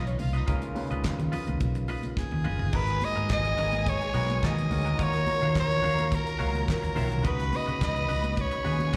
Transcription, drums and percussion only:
0.07 closed hi-hat soft
0.19 open hi-hat medium
0.19 high conga medium
0.19 low conga medium
0.34 closed hi-hat soft
0.47 kick loud
0.47 closed hi-hat medium
0.47 muted conga soft
0.62 closed hi-hat soft
0.62 muted conga soft
0.76 open hi-hat medium
0.76 high conga medium
0.92 closed hi-hat soft
1.04 kick loud
1.04 snare loud
1.04 clap medium
1.04 closed hi-hat medium
1.04 muted conga soft
1.19 closed hi-hat soft
1.19 low conga medium
1.33 open hi-hat medium
1.33 low conga medium
1.48 closed hi-hat medium
1.48 high conga medium
1.60 kick loud
1.60 closed hi-hat medium
1.60 muted conga soft
1.75 closed hi-hat soft
1.88 open hi-hat soft
1.88 high conga soft
2.03 closed hi-hat soft
2.03 high conga medium
2.17 kick loud
2.17 snare medium
2.17 muted conga soft
2.31 high tom medium
2.31 muted conga soft
2.45 mid tom medium
2.45 high conga medium
2.45 low conga medium
2.59 floor tom medium
2.73 kick loud
2.73 crash loud
2.73 muted conga soft
2.87 closed hi-hat soft
3.01 open hi-hat medium
3.01 high conga medium
3.17 closed hi-hat soft
3.29 kick loud
3.29 snare loud
3.29 clap medium
3.29 closed hi-hat medium
3.45 closed hi-hat soft
3.58 open hi-hat medium
3.58 low conga medium
3.72 closed hi-hat medium
3.72 high conga medium
3.86 kick loud
3.86 closed hi-hat medium
4.01 closed hi-hat soft
4.01 muted conga soft
4.14 open hi-hat medium
4.14 high conga medium
4.30 closed hi-hat soft
4.30 high conga medium
4.43 kick loud
4.43 snare loud
4.43 clap loud
4.43 closed hi-hat medium
4.58 closed hi-hat soft
4.71 open hi-hat medium
4.71 high conga medium
4.71 low conga medium
4.86 closed hi-hat soft
4.99 kick loud
4.99 closed hi-hat medium
5.13 snare soft
5.13 closed hi-hat soft
5.13 muted conga soft
5.27 open hi-hat medium
5.27 high conga medium
5.43 closed hi-hat soft
5.55 kick loud
5.55 snare loud
5.55 clap medium
5.55 closed hi-hat medium
5.55 muted conga soft
5.71 closed hi-hat soft
5.84 open hi-hat medium
5.84 low conga medium
5.99 closed hi-hat medium
5.99 high conga medium
6.12 kick loud
6.12 closed hi-hat medium
6.12 muted conga soft
6.27 closed hi-hat medium
6.27 muted conga soft
6.39 open hi-hat medium
6.39 high conga medium
6.55 closed hi-hat soft
6.55 high conga medium
6.68 kick loud
6.68 snare loud
6.68 clap loud
6.68 closed hi-hat medium
6.68 muted conga soft
6.83 closed hi-hat medium
6.83 muted conga soft
6.96 open hi-hat medium
6.96 high conga medium
6.96 low conga medium
7.12 closed hi-hat soft
7.24 kick loud
7.24 closed hi-hat medium
7.24 muted conga soft
7.39 snare soft
7.39 closed hi-hat soft
7.39 muted conga soft
7.53 open hi-hat medium
7.53 high conga medium
7.69 closed hi-hat soft
7.81 kick loud
7.81 snare loud
7.81 clap loud
7.81 closed hi-hat medium
7.81 muted conga soft
7.96 closed hi-hat soft
7.96 muted conga soft
8.09 open hi-hat medium
8.09 low conga medium
8.24 closed hi-hat soft
8.24 high conga medium
8.37 kick loud
8.37 closed hi-hat medium
8.37 muted conga soft
8.51 closed hi-hat medium
8.64 open hi-hat soft
8.64 high conga medium
8.80 closed hi-hat medium
8.80 high conga medium
8.93 closed hi-hat medium
8.93 muted conga soft

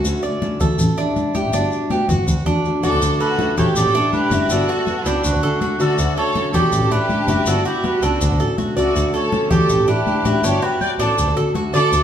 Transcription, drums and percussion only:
0.04 high conga soft
0.04 maracas medium
0.23 high conga soft
0.23 maracas soft
0.42 high conga medium
0.42 maracas soft
0.60 high conga soft
0.60 low conga medium
0.60 maracas medium
0.79 high conga soft
0.79 low conga medium
0.79 maracas medium
0.98 high conga soft
0.98 maracas soft
1.16 high conga medium
1.16 maracas soft
1.35 high conga medium
1.35 maracas medium
1.53 high conga medium
1.53 maracas medium
1.72 maracas soft
1.90 high conga medium
1.90 maracas soft
2.09 low conga medium
2.09 maracas medium
2.28 low conga medium
2.28 maracas medium
2.46 low conga medium
2.46 maracas soft
2.65 maracas soft
2.83 low conga medium
2.83 maracas medium
3.02 high conga soft
3.02 maracas medium
3.20 high conga soft
3.20 maracas soft
3.39 high conga medium
3.39 maracas soft
3.58 low conga medium
3.58 maracas medium
3.76 high conga soft
3.76 maracas loud
3.95 high conga soft
3.95 maracas soft
4.13 high conga medium
4.13 maracas soft
4.31 high conga medium
4.31 maracas medium
4.50 high conga soft
4.50 maracas medium
4.68 high conga soft
4.68 maracas soft
4.87 high conga medium
4.87 maracas soft
5.05 high conga soft
5.05 maracas medium
5.24 high conga soft
5.24 maracas medium
5.43 high conga soft
5.43 maracas soft
5.61 high conga medium
5.61 maracas soft
5.80 high conga soft
5.80 maracas medium
5.98 high conga soft
5.98 maracas medium
6.17 high conga soft
6.17 maracas soft
6.35 high conga medium
6.35 maracas soft
6.54 low conga medium
6.54 maracas medium
6.72 high conga soft
6.72 maracas medium
6.91 high conga soft
6.91 maracas soft
7.09 high conga medium
7.09 maracas soft
7.28 high conga medium
7.28 maracas medium
7.46 high conga soft
7.46 maracas medium
7.65 high conga soft
7.65 maracas soft
7.84 high conga medium
7.84 maracas soft
8.02 high conga soft
8.02 maracas medium
8.21 high conga soft
8.21 maracas medium
8.40 high conga soft
8.40 maracas soft
8.58 high conga medium
8.58 maracas soft
8.77 high conga soft
8.77 maracas medium
8.95 high conga soft
8.95 maracas medium
9.14 high conga soft
9.14 maracas soft
9.32 high conga loud
9.32 maracas soft
9.51 low conga medium
9.51 maracas medium
9.69 high conga soft
9.69 maracas medium
9.88 high conga soft
9.88 maracas soft
10.07 high conga medium
10.07 maracas soft
10.25 high conga medium
10.25 maracas medium
10.44 high conga soft
10.44 maracas medium
10.62 high conga soft
10.62 maracas soft
10.81 high conga medium
10.81 maracas soft
10.99 high conga soft
10.99 maracas medium
11.18 high conga soft
11.18 maracas medium
11.36 high conga soft
11.36 maracas soft
11.55 high conga medium
11.55 maracas soft
11.73 high conga soft
11.73 maracas medium
11.92 high conga soft
11.92 maracas medium

